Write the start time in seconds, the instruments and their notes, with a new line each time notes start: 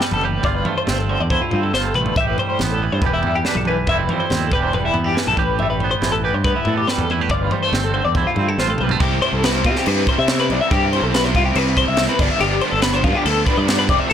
Already playing: clean electric guitar E2 E3 B3 A4
0.01 clean electric guitar G3 B4, snare
0.11 fingered electric bass F#1, clean electric guitar A4, floor tom, mid tom
0.21 clean electric guitar A2 G4 B4, mid tom
0.43 fingered electric bass G1, clean electric guitar G2 F4 D5, kick, floor tom
0.55 clean electric guitar B4
0.65 clean electric guitar A3 C5, floor tom, mid tom
0.78 clean electric guitar C5
0.87 fingered electric bass G1, clean electric guitar C4, snare, floor tom
0.99 clean electric guitar A4
1.09 clean electric guitar D3 C5
1.20 fingered electric bass E2, clean electric guitar D5
1.30 clean electric guitar E4 C5, kick, floor tom
1.42 clean electric guitar F4
1.51 fingered electric bass G2, clean electric guitar C4, floor tom
1.63 clean electric guitar A4
1.73 fingered electric bass G1, clean electric guitar G2 F4 C5, snare
1.85 clean electric guitar A4
1.94 fingered electric bass A1, clean electric guitar A3 B4, mid tom
2.06 floor tom
2.16 fingered electric bass A1, clean electric guitar A2 E5, kick, floor tom
2.20 clean electric guitar G4
2.28 clean electric guitar B4
2.38 clean electric guitar G3 C5, floor tom
2.50 clean electric guitar C5
2.59 fingered electric bass A1, snare, floor tom
2.64 clean electric guitar B3
2.71 clean electric guitar A4
2.82 clean electric guitar E3 B4
2.92 fingered electric bass G2, clean electric guitar C5
3.02 fingered electric bass E1, clean electric guitar E2 B4, kick, floor tom
3.06 clean electric guitar G4
3.13 clean electric guitar E4
3.23 fingered electric bass E2, floor tom
3.27 clean electric guitar G3
3.36 clean electric guitar G4
3.45 clean electric guitar D4 B4, snare
3.55 fingered electric bass B1, clean electric guitar A4, floor tom, mid tom
3.65 clean electric guitar E3 B4, mid tom
3.87 fingered electric bass F1, clean electric guitar F2 F3 G3 C4 E5, kick, floor tom
3.91 clean electric guitar E4
4.00 clean electric guitar B4
4.09 clean electric guitar G3 C5, floor tom, mid tom
4.20 clean electric guitar C5
4.30 fingered electric bass D#2, clean electric guitar C4, snare, floor tom
4.42 clean electric guitar A4
4.52 fingered electric bass E1, clean electric guitar E2 E3 G3 D4 G4 B4, kick
4.63 clean electric guitar C5
4.73 clean electric guitar G3 B4, floor tom
4.85 clean electric guitar E4
4.94 fingered electric bass E2, clean electric guitar B3, floor tom
5.04 clean electric guitar D4 G4
5.15 clean electric guitar E3 B4, snare
5.27 fingered electric bass B1, clean electric guitar A4, floor tom
5.37 fingered electric bass A1, clean electric guitar A2 G4 B4, kick, mid tom
5.59 clean electric guitar G3 E5, floor tom
5.70 clean electric guitar B4
5.80 clean electric guitar B3 C5, floor tom
5.91 clean electric guitar C5
6.02 fingered electric bass A1, clean electric guitar E3, snare, floor tom
6.12 clean electric guitar A4
6.24 clean electric guitar G4 B4
6.34 fingered electric bass G2, clean electric guitar C5
6.44 clean electric guitar B3 B4, kick, floor tom
6.56 clean electric guitar E4
6.65 clean electric guitar E2 A4, fingered electric bass A2, floor tom
6.77 clean electric guitar G4
6.87 clean electric guitar G3 B4, snare
6.98 fingered electric bass E2, clean electric guitar A4, floor tom, mid tom
7.10 clean electric guitar A2 E4 B4, mid tom
7.21 clean electric guitar G4
7.29 fingered electric bass G1, clean electric guitar F4 D5, kick, floor tom
7.33 clean electric guitar G2
7.42 clean electric guitar B4
7.51 clean electric guitar G3 C5, floor tom, mid tom
7.63 clean electric guitar A3 C5
7.73 fingered electric bass G1, clean electric guitar C4, snare, floor tom
7.84 clean electric guitar A4
7.94 clean electric guitar D3 C5
8.05 fingered electric bass E2, clean electric guitar D5
8.15 clean electric guitar E4 C5, kick, floor tom
8.27 clean electric guitar F4
8.36 fingered electric bass G2, clean electric guitar C4, floor tom
8.49 clean electric guitar A4
8.58 fingered electric bass A1, clean electric guitar G2 F4 C5, snare
8.68 clean electric guitar A4, high tom
8.78 fingered electric bass B1, clean electric guitar G3 B4, mid tom
8.89 clean electric guitar A3, floor tom
9.00 fingered electric bass C2, overdriven electric guitar C3 G3 C4 E4, clean electric guitar G4, kick, crash
9.22 overdriven electric guitar C4 E4, clean electric guitar C5, crash
9.26 overdriven electric guitar G3
9.33 fingered electric bass C2, clean electric guitar A4
9.43 overdriven electric guitar C3 G3 C4, clean electric guitar B4, snare, crash
9.47 overdriven electric guitar E4
9.55 clean electric guitar C5
9.64 fingered electric bass C3, overdriven electric guitar G3 C4 E4, clean electric guitar F4, kick, crash
9.76 clean electric guitar G4, snare
9.86 fingered electric bass G2, overdriven electric guitar C3 G3 C4 E4, clean electric guitar B4, crash
10.07 overdriven electric guitar G3 C4 E4, clean electric guitar C5, kick, crash
10.18 fingered electric bass C3, clean electric guitar E5
10.27 overdriven electric guitar C3 G3 C4 E4, snare, crash
10.40 clean electric guitar B4
10.50 fingered electric bass C2, clean electric guitar D5, crash
10.61 clean electric guitar E5
10.71 fingered electric bass G2, overdriven electric guitar C3 G3 C4, clean electric guitar G4, kick, crash
10.75 overdriven electric guitar E4
10.93 overdriven electric guitar G3 C4 E4, clean electric guitar C5, crash
11.02 fingered electric bass B1, clean electric guitar A4
11.14 overdriven electric guitar C3 G3 C4 E4, clean electric guitar B4, snare, crash
11.24 clean electric guitar C5
11.35 fingered electric bass C2, overdriven electric guitar G3 C4 E4, clean electric guitar F4, kick, crash
11.46 clean electric guitar G4
11.55 fingered electric bass C2, overdriven electric guitar C3 G3 C4, clean electric guitar B4, crash
11.60 overdriven electric guitar E4
11.77 overdriven electric guitar G3 C4 E4, clean electric guitar C5, kick, crash
11.88 fingered electric bass C2, clean electric guitar E5
11.97 overdriven electric guitar C3 G3 C4, snare, crash
12.01 overdriven electric guitar E4
12.09 clean electric guitar B4
12.19 fingered electric bass G1, overdriven electric guitar F3 B3 D4, clean electric guitar D5, kick, crash
12.23 overdriven electric guitar G2 D3
12.30 clean electric guitar E5
12.40 fingered electric bass G1, overdriven electric guitar G2 D3 F3 B3 D4, clean electric guitar G4, crash
12.61 overdriven electric guitar F3 B3 D4, clean electric guitar C5, crash
12.71 fingered electric bass G1, clean electric guitar A4
12.82 overdriven electric guitar D3 F3 B3, clean electric guitar B4, snare, crash
12.86 overdriven electric guitar D4
12.94 clean electric guitar C5
13.04 fingered electric bass G2, overdriven electric guitar F3 B3 D4, clean electric guitar F4, kick, crash
13.15 clean electric guitar G4
13.25 fingered electric bass D2, overdriven electric guitar G2 D3 F3 B3 D4, clean electric guitar A4, crash
13.46 overdriven electric guitar F3 B3 D4, clean electric guitar B4, kick, crash
13.57 fingered electric bass G2, clean electric guitar D5
13.67 overdriven electric guitar D3 F3 B3 D4, snare, crash
13.79 clean electric guitar B4
13.89 fingered electric bass F1, overdriven electric guitar F2 C3 F3 A3 C4, clean electric guitar D5, kick, crash
13.99 clean electric guitar E5
14.08 overdriven electric guitar F2 C3, clean electric guitar A4